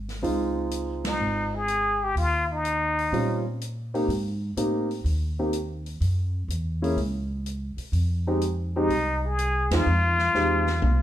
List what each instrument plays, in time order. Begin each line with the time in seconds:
Already playing: upright bass G#1
0.09 snare, open hi-hat
0.22 upright bass C#2, grand piano G#3 C4 D#4 F4, open hi-hat
0.71 closed hi-hat
1.04 muted trumpet D#4, snare, ride
1.19 upright bass G#1
1.56 muted trumpet G#4
1.68 closed hi-hat
2.04 muted trumpet G4
2.16 upright bass D#2, muted trumpet F4, open hi-hat
2.52 muted trumpet D#4
2.65 closed hi-hat
2.98 open hi-hat
3.12 upright bass A#2, grand piano G3 C4 C#4 F4, open hi-hat
3.61 closed hi-hat
3.94 grand piano A#3 C4 D#4 G4, open hi-hat
4.08 upright bass G#2, open hi-hat
4.57 upright bass A2, grand piano A#3 C4 D#4 G4, closed hi-hat
4.91 open hi-hat
5.04 upright bass D#2, open hi-hat
5.39 grand piano A#3 C4 D#4 G4
5.53 closed hi-hat
5.86 open hi-hat
6.01 upright bass F#2, open hi-hat
6.48 upright bass E2, closed hi-hat
6.82 grand piano A#3 C#4 E4 G#4, open hi-hat
6.96 upright bass C#2, open hi-hat
7.46 closed hi-hat
7.77 muted upright bass stroke, open hi-hat
7.92 upright bass F2, open hi-hat
8.27 grand piano G#3 C4 D#4 G4
8.41 closed hi-hat
8.76 grand piano G#3 C4 D#4 G4, muted trumpet D#4
8.88 upright bass C2, open hi-hat
9.26 muted trumpet G#4
9.38 closed hi-hat
9.70 upright bass E2, grand piano G#3 C4 D#4 F4, snare, ride
9.75 muted trumpet F4
9.86 upright bass F2
10.19 snare
10.34 upright bass E2, grand piano G#3 C4 D#4 G4, snare
10.67 snare
10.82 upright bass C2, high tom